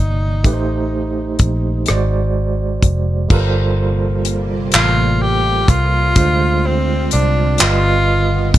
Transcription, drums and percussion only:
0.44 kick medium
0.44 closed hi-hat medium
1.39 kick medium
1.39 closed hi-hat medium
1.86 cross-stick medium
1.86 closed hi-hat medium
2.83 kick medium
2.83 closed hi-hat medium
3.30 kick medium
3.30 crash medium
4.25 closed hi-hat medium
4.72 clap loud
4.72 closed hi-hat medium
5.68 kick medium
5.68 closed hi-hat medium
6.16 kick loud
6.16 closed hi-hat medium
7.11 closed hi-hat medium
7.58 clap loud
7.58 closed hi-hat medium
8.54 kick medium
8.54 closed hi-hat medium

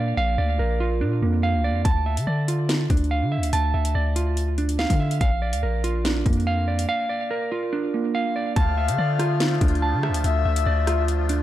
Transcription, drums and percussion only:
1.85 kick loud
1.85 closed hi-hat medium
2.17 closed hi-hat medium
2.48 closed hi-hat medium
2.69 snare loud
2.69 closed hi-hat medium
2.90 kick loud
2.90 closed hi-hat medium
2.97 closed hi-hat medium
3.04 closed hi-hat soft
3.43 closed hi-hat medium
3.53 closed hi-hat medium
3.85 closed hi-hat medium
4.16 closed hi-hat medium
4.37 closed hi-hat medium
4.58 closed hi-hat soft
4.69 closed hi-hat medium
4.79 snare loud
4.90 kick medium
4.90 closed hi-hat medium
5.11 closed hi-hat medium
5.21 kick loud
5.21 closed hi-hat medium
5.53 closed hi-hat medium
5.84 closed hi-hat medium
6.05 snare loud
6.05 closed hi-hat medium
6.26 kick loud
6.26 closed hi-hat medium
6.33 closed hi-hat medium
6.40 closed hi-hat soft
6.79 closed hi-hat medium
8.56 kick loud
8.56 closed hi-hat medium
8.88 closed hi-hat loud
9.19 cross-stick medium
9.19 closed hi-hat medium
9.40 snare loud
9.40 closed hi-hat medium
9.61 kick loud
9.61 closed hi-hat medium
9.68 closed hi-hat medium
9.75 closed hi-hat soft
10.03 cross-stick loud
10.14 closed hi-hat medium
10.24 closed hi-hat medium
10.56 closed hi-hat loud
10.87 cross-stick medium
10.87 closed hi-hat medium
11.08 closed hi-hat medium
11.29 closed hi-hat medium

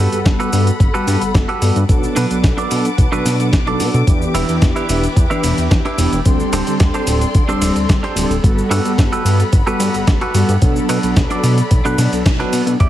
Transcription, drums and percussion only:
0.13 closed hi-hat medium
0.13 shaker soft
0.26 kick loud
0.26 snare loud
0.26 closed hi-hat medium
0.26 shaker soft
0.40 closed hi-hat soft
0.40 shaker soft
0.53 open hi-hat loud
0.53 shaker medium
0.67 closed hi-hat medium
0.67 shaker soft
0.80 kick loud
0.80 closed hi-hat medium
0.80 shaker soft
0.95 shaker soft
1.08 open hi-hat loud
1.08 shaker medium
1.22 closed hi-hat medium
1.22 shaker soft
1.35 kick loud
1.35 snare loud
1.35 closed hi-hat medium
1.35 shaker soft
1.49 closed hi-hat soft
1.62 open hi-hat loud
1.62 shaker medium
1.76 closed hi-hat medium
1.76 shaker soft
1.89 kick loud
1.89 closed hi-hat medium
1.89 shaker soft
2.03 shaker soft
2.16 open hi-hat loud
2.16 shaker medium
2.31 closed hi-hat medium
2.31 shaker soft
2.44 kick loud
2.44 snare loud
2.44 closed hi-hat medium
2.44 shaker soft
2.58 closed hi-hat soft
2.58 shaker soft
2.71 open hi-hat loud
2.71 shaker medium
2.85 closed hi-hat medium
2.85 shaker soft
2.98 kick loud
2.98 closed hi-hat medium
2.98 shaker soft
3.13 shaker soft
3.26 snare soft
3.26 open hi-hat loud
3.26 shaker medium
3.40 closed hi-hat soft
3.40 shaker soft
3.53 kick loud
3.53 snare loud
3.53 closed hi-hat medium
3.53 shaker soft
3.67 closed hi-hat soft
3.80 open hi-hat loud
3.80 shaker medium
3.94 closed hi-hat soft
3.94 shaker soft
4.07 kick loud
4.07 closed hi-hat medium
4.07 shaker soft
4.22 shaker soft
4.35 open hi-hat loud
4.35 ride medium
4.35 shaker medium
4.49 closed hi-hat soft
4.49 shaker soft
4.62 kick loud
4.62 snare loud
4.62 closed hi-hat medium
4.62 shaker soft
4.76 closed hi-hat soft
4.76 shaker soft
4.89 open hi-hat medium
4.89 ride medium
4.89 shaker medium
5.04 closed hi-hat medium
5.04 shaker soft
5.16 kick loud
5.16 closed hi-hat medium
5.16 shaker soft
5.31 shaker soft
5.44 open hi-hat loud
5.44 ride medium
5.44 shaker medium
5.58 closed hi-hat medium
5.58 shaker soft
5.71 kick loud
5.71 snare loud
5.71 closed hi-hat medium
5.71 shaker soft
5.85 closed hi-hat soft
5.98 open hi-hat medium
5.98 ride medium
5.98 shaker medium
6.13 closed hi-hat soft
6.13 shaker soft
6.25 kick loud
6.25 closed hi-hat medium
6.25 shaker soft
6.40 shaker soft
6.53 open hi-hat loud
6.53 ride medium
6.53 shaker medium
6.67 closed hi-hat medium
6.67 shaker soft
6.80 kick loud
6.80 snare loud
6.80 closed hi-hat medium
6.80 shaker soft
6.94 closed hi-hat soft
6.94 shaker soft
7.07 open hi-hat medium
7.07 ride medium
7.07 shaker medium
7.21 closed hi-hat medium
7.21 shaker soft
7.35 kick loud
7.35 closed hi-hat medium
7.35 shaker soft
7.49 shaker soft
7.62 snare soft
7.62 open hi-hat loud
7.62 ride medium
7.62 shaker medium
7.76 closed hi-hat medium
7.76 shaker soft
7.89 kick loud
7.89 snare loud
7.89 closed hi-hat medium
7.89 shaker soft
8.04 closed hi-hat soft
8.17 open hi-hat medium
8.17 ride medium
8.17 shaker medium
8.31 closed hi-hat medium
8.31 shaker soft
8.44 kick loud
8.44 closed hi-hat medium
8.44 shaker soft
8.58 shaker soft
8.71 open hi-hat loud
8.71 ride medium
8.71 shaker medium
8.85 closed hi-hat medium
8.85 shaker soft
8.98 kick loud
8.98 snare loud
8.98 closed hi-hat medium
8.98 shaker soft
9.13 closed hi-hat soft
9.13 shaker soft
9.26 open hi-hat medium
9.26 ride medium
9.26 shaker medium
9.40 closed hi-hat medium
9.40 shaker soft
9.53 kick loud
9.53 closed hi-hat medium
9.53 shaker soft
9.67 shaker soft
9.80 open hi-hat loud
9.80 ride medium
9.80 shaker medium
9.94 closed hi-hat medium
9.94 shaker soft
10.07 kick loud
10.07 snare loud
10.07 closed hi-hat medium
10.07 shaker soft
10.21 closed hi-hat soft
10.35 open hi-hat medium
10.35 ride medium
10.35 shaker medium
10.49 closed hi-hat medium
10.49 shaker soft
10.62 kick loud
10.62 closed hi-hat medium
10.62 shaker soft
10.76 shaker soft
10.89 open hi-hat loud
10.89 ride medium
10.89 shaker medium
11.03 closed hi-hat medium
11.03 shaker soft
11.16 kick loud
11.16 snare loud
11.16 closed hi-hat medium
11.16 shaker soft
11.30 closed hi-hat soft
11.30 shaker soft
11.44 open hi-hat medium
11.44 ride medium
11.44 shaker medium
11.58 closed hi-hat medium
11.58 shaker soft
11.71 kick loud
11.71 closed hi-hat medium
11.71 shaker soft
11.85 shaker soft
11.98 snare soft
11.98 open hi-hat loud
11.98 ride medium
11.98 shaker medium
12.13 closed hi-hat medium
12.13 shaker soft
12.26 kick loud
12.26 snare loud
12.26 closed hi-hat medium
12.26 shaker soft
12.40 closed hi-hat soft
12.53 open hi-hat medium
12.53 ride medium
12.53 shaker medium
12.67 closed hi-hat medium
12.67 shaker soft
12.80 kick loud
12.80 closed hi-hat medium

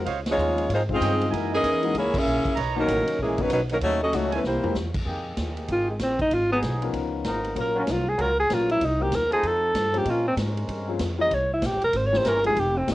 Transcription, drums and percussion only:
0.06 kick soft
0.06 ride medium
0.26 snare medium
0.26 ride medium
0.38 hi-hat pedal medium
0.58 ride soft
0.70 kick soft
0.70 ride medium
0.89 kick soft
1.01 kick soft
1.01 hi-hat pedal medium
1.01 ride medium
1.21 ride medium
1.33 kick soft
1.33 ride medium
1.64 kick soft
1.64 hi-hat pedal medium
1.64 ride medium
1.83 ride soft
1.95 kick soft
1.95 ride medium
2.14 kick medium
2.14 crash medium
2.26 hi-hat pedal medium
2.45 kick medium
2.45 ride soft
2.57 kick soft
2.57 ride medium
2.88 kick soft
2.88 hi-hat pedal medium
2.88 ride medium
3.08 ride medium
3.19 kick soft
3.38 kick medium
3.38 ride medium
3.50 kick soft
3.50 hi-hat pedal medium
3.50 ride medium
3.69 ride medium
3.81 kick soft
3.81 ride medium
4.13 kick soft
4.13 hi-hat pedal medium
4.13 ride medium
4.32 ride medium
4.44 snare soft
4.63 floor tom medium
4.75 snare medium
4.75 hi-hat pedal medium
4.94 kick medium
4.94 crash medium
5.06 kick soft
5.37 kick soft
5.37 snare medium
5.37 hi-hat pedal soft
5.37 ride medium
5.57 ride soft
5.68 kick soft
5.68 ride medium
5.99 kick soft
5.99 snare medium
5.99 hi-hat pedal medium
5.99 ride medium
6.19 kick medium
6.19 ride soft
6.31 kick soft
6.31 ride medium
6.62 kick soft
6.62 snare medium
6.62 hi-hat pedal medium
6.62 ride medium
6.82 ride soft
6.93 kick soft
6.93 ride medium
7.24 kick soft
7.24 snare medium
7.24 hi-hat pedal medium
7.24 ride medium
7.44 ride soft
7.56 kick soft
7.56 ride medium
7.87 kick soft
7.87 snare medium
7.87 hi-hat pedal medium
7.87 ride medium
8.18 kick soft
8.18 ride medium
8.50 kick soft
8.50 snare medium
8.50 hi-hat pedal medium
8.50 ride medium
8.69 ride soft
8.81 kick soft
8.81 ride medium
9.12 kick soft
9.12 snare medium
9.12 hi-hat pedal medium
9.12 ride medium
9.32 ride soft
9.43 kick soft
9.43 ride medium
9.74 kick soft
9.74 snare medium
9.74 hi-hat pedal medium
9.74 ride medium
9.94 ride soft
10.05 kick soft
10.05 ride medium
10.37 kick soft
10.37 snare medium
10.37 hi-hat pedal medium
10.37 ride medium
10.57 ride soft
10.68 kick soft
10.68 ride medium
10.99 kick soft
10.99 snare medium
10.99 hi-hat pedal medium
10.99 ride medium
11.31 kick soft
11.31 ride medium
11.62 kick soft
11.62 snare medium
11.62 hi-hat pedal medium
11.62 ride medium
11.81 ride soft
11.93 kick soft
11.93 ride medium
12.13 snare medium
12.25 kick soft
12.25 snare medium
12.25 hi-hat pedal medium
12.25 ride medium
12.44 ride soft
12.56 kick soft
12.56 ride medium
12.88 kick soft
12.88 snare medium
12.88 hi-hat pedal medium
12.88 ride medium

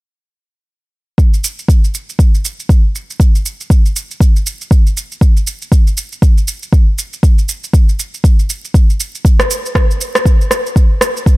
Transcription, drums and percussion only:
1.18 kick loud
1.18 shaker soft
1.34 shaker soft
1.44 shaker medium
1.59 shaker soft
1.68 kick loud
1.68 shaker soft
1.84 shaker soft
1.94 shaker medium
2.09 shaker soft
2.19 kick loud
2.19 shaker soft
2.35 shaker soft
2.45 shaker medium
2.60 shaker soft
2.69 kick loud
2.69 shaker soft
2.95 shaker medium
3.10 shaker soft
3.20 kick loud
3.20 shaker medium
3.35 shaker soft
3.46 shaker medium
3.61 shaker soft
3.70 kick loud
3.70 shaker medium
3.86 shaker soft
3.96 shaker medium
4.11 shaker soft
4.20 kick loud
4.20 shaker medium
4.36 shaker soft
4.47 shaker medium
4.61 shaker soft
4.71 kick loud
4.71 shaker soft
4.87 shaker soft
4.97 shaker medium
5.12 shaker soft
5.21 kick loud
5.21 shaker medium
5.37 shaker soft
5.47 shaker medium
5.62 shaker soft
5.72 kick loud
5.72 shaker medium
5.87 shaker soft
5.97 shaker medium
6.12 shaker soft
6.22 kick loud
6.22 shaker medium
6.38 shaker soft
6.48 shaker medium
6.63 shaker soft
6.73 kick loud
6.73 shaker medium
6.98 shaker medium
7.13 shaker soft
7.23 kick loud
7.23 shaker soft
7.38 shaker soft
7.49 shaker medium
7.64 shaker soft
7.73 kick loud
7.73 shaker medium
7.89 shaker soft
7.99 shaker medium
8.14 shaker soft
8.24 kick loud
8.24 shaker medium
8.39 shaker soft
8.50 shaker medium
8.65 shaker soft
8.74 kick loud
8.74 shaker soft
8.90 shaker soft
9.00 shaker medium
9.15 shaker soft
9.25 kick loud
9.25 shaker medium
9.40 cross-stick medium
9.40 shaker soft
9.51 shaker medium
9.66 shaker soft
9.75 kick loud
9.75 cross-stick medium
9.75 shaker soft
9.91 shaker soft
10.01 shaker medium
10.15 cross-stick medium
10.15 shaker soft
10.26 kick loud
10.26 shaker medium
10.41 shaker soft
10.51 cross-stick medium
10.51 shaker medium
10.66 shaker soft
10.76 kick loud
10.76 shaker medium
11.01 cross-stick medium
11.01 shaker medium
11.17 shaker soft
11.26 kick loud
11.26 shaker soft

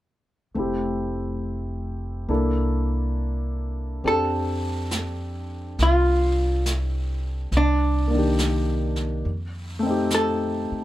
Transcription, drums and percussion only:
4.04 brush sweep soft
4.91 snare soft
4.91 hi-hat pedal soft
5.79 brush sweep soft
5.79 snare soft
6.66 snare soft
6.66 hi-hat pedal soft
7.52 brush sweep soft
7.52 snare soft
8.38 snare soft
8.38 hi-hat pedal soft
8.96 snare soft
9.26 brush sweep soft
10.10 snare soft
10.10 hi-hat pedal soft

